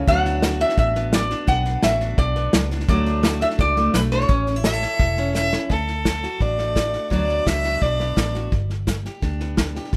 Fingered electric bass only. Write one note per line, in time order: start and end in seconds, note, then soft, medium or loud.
0.08 0.63 D2 loud
0.77 1.33 A1 medium
1.48 1.75 B1 loud
1.83 2.13 A1 medium
2.18 2.48 B1 medium
2.54 2.84 C#2 medium
2.88 3.44 D2 medium
3.59 3.89 C#2 medium
3.94 4.24 B1 medium
4.29 4.84 A1 medium
5.00 5.55 E1 medium
5.70 6.25 D2 medium
6.41 6.96 A1 medium
7.11 7.39 D2 medium
7.47 7.76 C#2 medium
7.82 8.12 B1 medium
8.17 8.47 A1 medium
8.52 9.07 G1 medium
9.22 9.78 D2 medium
9.93 9.97 A1 medium